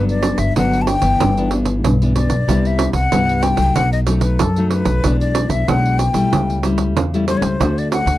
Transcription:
Already playing: upright bass G1, nylon-string guitar G2 F#3 B3 D4
0.09 flute D5, pandeiro
0.23 pandeiro
0.38 upright bass G1, flute E5, pandeiro
0.56 upright bass G1, nylon-string guitar D3 F#3 B3 D4, flute F#5, pandeiro
0.73 pandeiro
0.82 flute A5
0.87 flute G5, pandeiro
1.02 upright bass G1, nylon-string guitar E3 B3 D4, pandeiro
1.20 upright bass G1, nylon-string guitar G2, pandeiro
1.37 nylon-string guitar E3 B3 D4, pandeiro
1.51 nylon-string guitar E3 B3 D4, pandeiro
1.65 pandeiro
1.84 upright bass B1, nylon-string guitar G2, pandeiro
2.02 nylon-string guitar E3 B3 D4, pandeiro
2.16 nylon-string guitar E3 B3 D4, flute D5, pandeiro
2.30 upright bass B1, pandeiro
2.48 upright bass C2, nylon-string guitar C3 G3 B3 E4, pandeiro
2.65 flute E5, pandeiro
2.79 pandeiro
2.93 upright bass C2, flute F#5, pandeiro
3.12 upright bass C2, nylon-string guitar G2 G3 B3 E4, pandeiro
3.29 pandeiro
3.43 flute G5, pandeiro
3.57 upright bass C2, nylon-string guitar F#3 A3 D#4, pandeiro
3.76 upright bass B1, nylon-string guitar B2, flute F#5, pandeiro
3.93 flute D#5, pandeiro
4.07 nylon-string guitar F#3 A3 D#4, pandeiro
4.21 flute B4, pandeiro
4.39 upright bass F#2, nylon-string guitar F#2, flute A4, pandeiro
4.56 nylon-string guitar F#3 A3 D#4, pandeiro
4.71 flute B4, pandeiro
4.85 upright bass B1, pandeiro
5.04 upright bass B1, nylon-string guitar B2 E3 G#3 D4, pandeiro
5.21 flute D5, pandeiro
5.35 pandeiro
5.49 upright bass B1, flute E5, pandeiro
5.68 upright bass B1, nylon-string guitar B2 E3 G#3 D4, flute F#5, pandeiro
5.86 pandeiro
5.98 flute G5, pandeiro
6.13 upright bass B1, nylon-string guitar G3 A3 E4, pandeiro
6.32 upright bass C#2, nylon-string guitar C#3, pandeiro
6.50 pandeiro
6.63 nylon-string guitar G3 A3 E4, pandeiro
6.78 pandeiro
6.97 upright bass E2, nylon-string guitar C#3, pandeiro
7.14 nylon-string guitar G3 A3 E4, pandeiro
7.28 nylon-string guitar G3 A3 E4, flute C5, pandeiro
7.37 flute C#5
7.42 upright bass C#2, flute C5, pandeiro
7.60 upright bass D2, nylon-string guitar D3 A3 D4 F#4, pandeiro
7.78 flute D5, pandeiro
7.92 flute F#5, pandeiro
8.06 upright bass D2, pandeiro

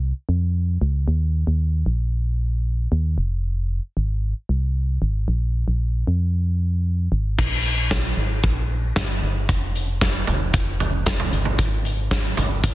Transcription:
Already playing: fm bass C2
0.29 fm bass F2
0.81 fm bass C#2
1.08 fm bass D#2
1.47 fm bass D#2
1.86 fm bass A#1
2.92 fm bass D#2
3.18 fm bass F1
3.97 fm bass G#1
4.49 fm bass C2
5.02 fm bass G#1
5.28 fm bass A#1
5.68 fm bass A#1
6.07 fm bass F2
7.12 fm bass G#1
7.38 fm bass A#1, kick, crash
7.91 kick, snare
8.17 fm bass G#1
8.44 fm bass A#1, kick
8.96 fm bass G1, kick, snare
9.22 fm bass G1
9.49 fm bass F1, kick, closed hi-hat
9.76 closed hi-hat
10.01 kick, snare, closed hi-hat
10.27 fm bass F1, closed hi-hat, floor tom
10.53 fm bass F1, kick, closed hi-hat
10.80 closed hi-hat, floor tom
11.06 kick, snare, closed hi-hat
11.20 floor tom
11.33 fm bass G1, closed hi-hat
11.45 floor tom
11.58 fm bass G#1, kick, closed hi-hat
11.85 closed hi-hat
12.11 kick, snare, closed hi-hat
12.37 fm bass G1, closed hi-hat, floor tom
12.63 fm bass G#1, kick, closed hi-hat

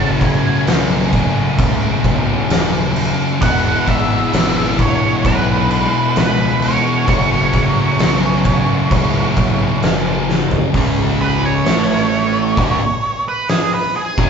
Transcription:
Already playing: picked electric bass F#1, distorted electric guitar F#2 C#3 F#3, overdriven electric guitar A3 C#4 F#4, lead electric guitar A5
0.17 lead electric guitar G#5, kick, crash
0.22 snare
0.66 picked electric bass B1, snare, crash
1.13 kick, crash
1.58 picked electric bass C#2, distorted electric guitar F#2 C#3 F#3, kick, crash
2.04 picked electric bass B1, kick, crash
2.49 picked electric bass D#1, snare, crash
2.96 crash
3.40 picked electric bass E1, distorted electric guitar E2 B2 E3, overdriven electric guitar G#3, lead electric guitar F#5, kick, crash
3.44 overdriven electric guitar B3 E4
3.88 picked electric bass G#1, lead electric guitar E5, kick, crash
4.33 picked electric bass G#1, snare, crash
4.79 lead electric guitar C#5, kick, crash
5.23 picked electric bass B1, distorted electric guitar E2 B2 E3, kick, crash
5.27 lead electric guitar B4
5.71 crash
6.16 picked electric bass C#2, lead electric guitar B4, snare, crash
6.62 lead electric guitar C#5, crash
7.06 picked electric bass F#1, distorted electric guitar F#2 C#3 F#3, overdriven electric guitar A3 C#4 F#4, kick, crash
7.53 kick, snare, crash
7.99 picked electric bass B1, snare, crash
8.45 kick, crash
8.90 picked electric bass C#2, distorted electric guitar F#2 C#3 F#3, kick, crash
9.37 picked electric bass B1, kick, crash
9.82 picked electric bass F#1, snare, crash
10.30 snare
10.51 floor tom
10.74 picked electric bass C#1, distorted electric guitar C#2 C#3, kick, open hi-hat
11.21 lead electric guitar B4
11.45 lead electric guitar C#5
11.65 picked electric bass A1, distorted electric guitar A2 A3, snare, open hi-hat
11.90 snare
12.57 picked electric bass D1, distorted electric guitar D2 D3, kick, open hi-hat
13.28 lead electric guitar B4
13.48 lead electric guitar G#4, snare, open hi-hat
13.74 lead electric guitar B4
13.96 lead electric guitar G#4
14.18 picked electric bass F#1, distorted electric guitar F#2 F#3, kick

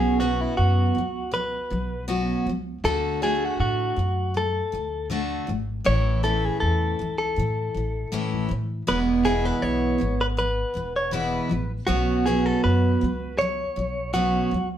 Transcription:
Already playing: upright bass B1, steel-string acoustic guitar B2 F#3 B3 C#4 F#4, clean electric guitar G#4
0.20 steel-string acoustic guitar B2 F#3 B3 C#4 F#4, clean electric guitar F#4
0.41 clean electric guitar E4
0.57 upright bass F#2, clean electric guitar F#4
0.95 upright bass C#2, steel-string acoustic guitar B2 F#3
1.31 steel-string acoustic guitar B2 F#3, clean electric guitar B4
1.70 upright bass B1, steel-string acoustic guitar B2 F#3
2.08 steel-string acoustic guitar B2 F#3 B3 C#4 F#4
2.46 upright bass C#2, steel-string acoustic guitar B2 F#3
2.84 upright bass D2, steel-string acoustic guitar D3 A3 D4 F#4, clean electric guitar A4
3.22 steel-string acoustic guitar D3 A3 D4 F#4, clean electric guitar G#4
3.45 clean electric guitar F#4
3.60 upright bass A2, clean electric guitar F#4
3.96 upright bass F#2, steel-string acoustic guitar D3 A3
4.34 steel-string acoustic guitar D3 A3, clean electric guitar A4
4.72 upright bass D2, steel-string acoustic guitar D3 A3
5.10 steel-string acoustic guitar D3 A3 D4 F#4
5.47 upright bass G#1, steel-string acoustic guitar D3 A3
5.84 upright bass A1, steel-string acoustic guitar A2 E3 A3 C#4 E4, clean electric guitar C#5
6.23 steel-string acoustic guitar A2 E3 A3 C#4 E4, clean electric guitar A4
6.45 clean electric guitar G#4
6.60 upright bass E2, clean electric guitar A4
6.99 upright bass C#2, steel-string acoustic guitar A2 E3
7.18 clean electric guitar A4
7.36 steel-string acoustic guitar A2 E3, upright bass A2
7.74 upright bass A1, steel-string acoustic guitar A2 E3
8.12 steel-string acoustic guitar A2 E3 A3 C#4 E4, muted upright bass stroke
8.34 upright bass A1
8.49 steel-string acoustic guitar A2 E3, upright bass A2
8.87 upright bass E1, steel-string acoustic guitar E2 B2 E3 G#3 B3 E4, clean electric guitar B4
9.24 steel-string acoustic guitar E2 B2 E3 G#3 B3 E4, clean electric guitar G#4
9.45 clean electric guitar B4
9.62 upright bass B1, clean electric guitar C#5
9.98 upright bass G#1, steel-string acoustic guitar E2 B2 E3
10.21 clean electric guitar B4
10.37 steel-string acoustic guitar E2 B2 E3, clean electric guitar B4
10.74 upright bass E1, steel-string acoustic guitar E2 B2 E3
10.96 clean electric guitar C#5
11.11 steel-string acoustic guitar E2 B2 E3 G#3 B3 E4, clean electric guitar B4
11.49 upright bass A1, steel-string acoustic guitar E2 B2 E3
11.87 upright bass B1, steel-string acoustic guitar B2 F#3 B3 C#4 F#4, clean electric guitar F#4
12.26 steel-string acoustic guitar B2 F#3 B3 C#4 F#4, clean electric guitar G#4
12.46 clean electric guitar A4
12.64 upright bass F#2, clean electric guitar B4
13.01 upright bass C#2, steel-string acoustic guitar B2 F#3
13.38 steel-string acoustic guitar B2 F#3, clean electric guitar C#5
13.76 upright bass B1, steel-string acoustic guitar B2 F#3
14.13 steel-string acoustic guitar B2 F#3 B3 C#4 F#4, clean electric guitar F#4
14.51 upright bass C#2, steel-string acoustic guitar B2 F#3

